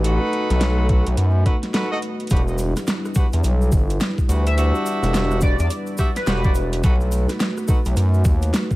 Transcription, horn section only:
0.05 D#4 F#4 A4 B4
0.89 D#4 F#4 A4 B4
1.46 D#4 F#4 A4 B4
1.74 D#4 F#4 A4 B4
1.92 D#4 F#4 A4 D#5
2.31 D4 F#4 G4 B4
3.16 D4 F#4 G4 B4
4.29 D4 F#4 G4 B4
4.57 D4 F#4 G4 E5
5.42 D4 F#4 G4 B4
5.99 D4 F#4 G4 E5
6.27 D4 F#4 G4 B4
6.44 D4 F#4 G4 D5
6.84 D#4 F#4 A4 B4
7.68 D#4 F#4 A4 B4

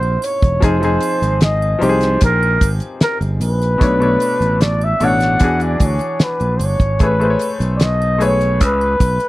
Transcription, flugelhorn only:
Already playing: C5
0.24 C#5
0.64 C5
1.43 D#5
1.83 C5
2.24 A#4
3.02 A#4
3.43 B4
4.62 D5
4.84 E5
5.04 F#5
5.63 D5
5.85 C#5
6.23 B4
6.57 C5
6.64 C#5
7.04 B4
7.76 D5
7.83 D#5
8.24 C#5
8.64 B4

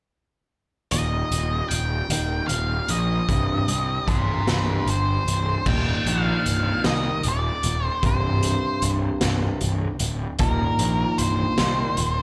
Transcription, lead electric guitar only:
0.92 D#5
1.69 G5
2.48 F5
2.90 D#5
4.08 A#4 D5
4.50 C5
4.64 A4
4.90 C5
5.68 G5
6.08 F5
6.86 D#5
7.28 D5
7.86 C5
8.06 C5
10.40 A#4
11.18 C5

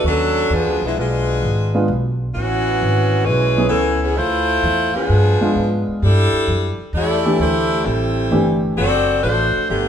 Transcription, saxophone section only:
0.07 F#3 C#4 D4 A4
0.53 F3 B3 D4 G#4
0.86 G#3 B3 D4 E4
0.99 G#3 B3 D4 F4
2.35 E3 B3 C#4 F#4
3.25 G#3 C#4 E4 B4
3.69 E3 B3 C#4 A4
4.01 E3 B3 C#4 G#4
4.17 A3 E4 F4 C5
4.94 F3 B3 D4 G#4
6.04 G3 D4 E4 A4
6.95 A3 E4 G4 D5
7.41 A3 E4 G4 C5
7.85 G3 C4 E4 A4
8.75 C4 F#4 A4 D5
9.22 A3 D4 F#4 C5
9.70 D3 A3 B3 G4

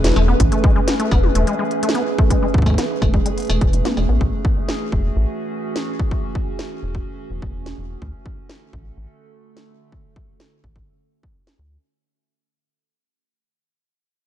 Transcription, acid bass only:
0.16 A3
0.28 B3
0.52 A3
0.64 G#3
0.76 G#3
1.00 A3
1.12 B3
1.35 A3
1.47 G#3
1.59 G#3
1.83 A3
1.95 B3
2.18 A3
2.30 G#3
2.42 G#3
2.66 A3
2.78 B3
3.02 A3
3.14 G#3
3.26 G#3
3.50 A3
3.61 G#3
3.85 B3
3.97 G#3
4.09 B3

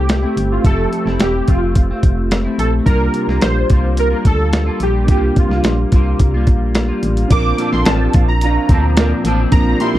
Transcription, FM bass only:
Already playing: C2
0.37 G1
0.65 F1
1.06 F1
1.19 E1
1.48 F1
2.03 F1
2.58 A#1
2.87 C2
3.28 C2
3.43 A#1
3.70 C2
4.25 D2
4.80 A#1
5.08 C2
5.49 C2
5.63 A#1
5.93 C2
6.20 C2
6.48 A#1
7.03 A1
7.31 A#1
7.73 A#1
7.86 A1
8.15 A#1
8.69 D2
9.24 A1
9.52 A#1
9.94 A#1

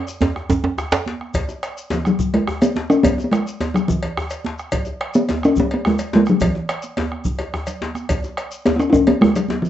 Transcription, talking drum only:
1.94 E3
2.07 F#3
2.34 G#3
2.62 B3
2.90 C#4
3.03 B3
3.24 B3
3.31 G#3
3.74 F#3
3.88 E3
5.15 B3
5.45 C#4
5.60 B3
5.74 B3
5.87 G#3
6.15 G#3
6.30 F#3
6.43 E3
8.66 B3
8.76 C#4 E4
8.90 C#4 E4
9.08 B3
9.21 G#3
9.36 F#3
9.62 E3

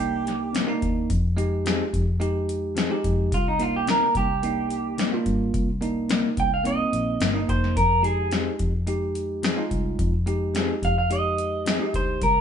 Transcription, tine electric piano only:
Already playing: A#3
0.00 D4 D#4
0.67 A#3 D4 D#4
1.37 G#3 D#4 G4
2.20 G#3 D#4 G4
2.90 G#3 D#4 G4
3.59 A#3 D4 D#4
4.42 A#3 D4 D#4
5.12 A#3 D4 F4
5.81 A#3 D4 D#4
6.64 A#3 C4 D#4
7.33 A#3 D4 D#4
8.02 G#3 D#4 G4
8.87 G#3 D#4 G4
9.56 G#3 D#4 F4
10.26 G#3 D#4 G4
11.10 G#3 D#4 G4
11.79 G#3 D#4 G4

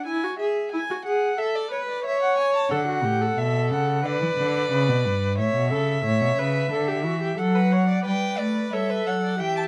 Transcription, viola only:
0.07 E4
0.24 F#4
0.40 G#4
0.73 E4
0.90 F#4
1.06 G#4
1.39 A4
1.72 B4
2.05 C#5
2.71 A4
2.88 F#4
3.04 G4
3.21 A4
4.05 B4
5.38 C#5
5.72 A4
6.05 C#5
6.39 B4
6.72 A4
6.88 G4
7.04 F#4
7.22 G4
7.38 A4
7.55 B4
7.72 C#5
7.89 D5
8.05 B4
8.73 A4
9.40 G4

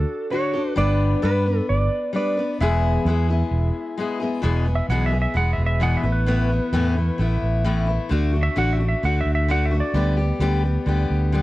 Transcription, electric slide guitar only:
Already playing: A4
0.31 C#5
0.78 D5
1.23 B4
1.69 D5
2.16 D5
2.61 E5
4.75 E5
4.90 F#5
5.06 E5
5.22 E5
5.37 F#5
5.53 E5
5.66 E5
5.83 F#5
5.97 E5
6.12 B4
8.43 E5
8.58 F#5
8.73 E5
8.89 E5
9.05 F#5
9.21 E5
9.35 E5
9.51 F#5
9.65 E5
9.80 D5

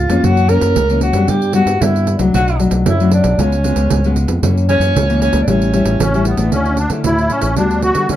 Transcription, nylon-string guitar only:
Already playing: G#2
0.09 E3 A#3 C#4
0.24 F#2
0.49 E3 A#3 C#4
0.77 C#3
0.90 E3 A#3 C#4
1.14 G3 B3 D4
1.30 G2
1.55 G3 B3 D4
1.81 D3 G3 B3 D4
2.19 F#3 A3 D4
2.34 B2
2.59 F#3 A3 D4
2.87 F#2
3.01 F#3 A3 D4
3.39 C#3 G#3 B3 F4
3.64 G#3 B3 F4
3.91 G#2
4.05 G#3 B3 F4
4.43 F#2 E3 A#3 C#4
4.69 E3 A#3 C#4
4.95 C#3
5.10 E3 A#3 C#4
5.48 A2 G3 C#4 E4
5.74 G3 C#4 E4
6.01 E3
6.14 G3 C#4 E4
6.38 A3 D4 E4
6.53 D3
6.91 A3 D4 E4
7.05 A2
7.30 A3 D4 E4
7.57 D3 G3 B3 F#4
7.95 G3 B3 F#4
8.10 D3

